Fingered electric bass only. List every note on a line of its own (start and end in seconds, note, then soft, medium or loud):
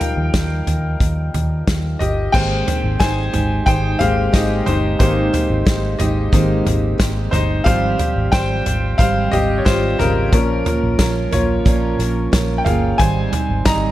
0.17 0.31 D#2 loud
0.34 0.61 D#2 medium
0.67 0.94 D#2 medium
1.01 1.28 D#2 loud
1.34 1.61 D#2 loud
1.68 1.95 D#2 medium
2.00 2.28 G1 medium
2.34 2.61 G#1 loud
2.84 2.97 G#1 loud
3.01 3.28 G#1 loud
3.34 3.61 G#1 loud
3.66 3.94 G#1 loud
4.00 4.28 G#1 loud
4.34 4.61 G#1 loud
4.67 4.94 G1 loud
5.00 5.27 G#1 loud
5.50 5.63 G#1 medium
6.00 6.27 G#1 medium
6.33 6.60 G#1 loud
6.66 6.94 G#1 loud
7.00 7.27 G#1 loud
7.32 7.60 G1 loud
7.66 7.94 G#1 loud
8.16 8.30 G#1 medium
8.33 8.60 G#1 loud
8.67 8.94 G#1 loud
8.99 9.27 G#1 loud
9.33 9.60 G#1 medium
9.66 9.94 G#1 medium
10.00 10.27 G#1 medium
10.33 10.60 A#1 medium
10.83 10.97 A#1 medium
10.99 11.27 A#1 loud
11.34 11.61 A#1 medium
11.66 11.93 A#1 loud
11.99 12.27 A#1 loud
12.33 12.60 A#1 loud
12.66 12.93 G1 medium
12.99 13.27 G#1 loud
13.49 13.63 G#1 loud
13.66 13.91 G#1 medium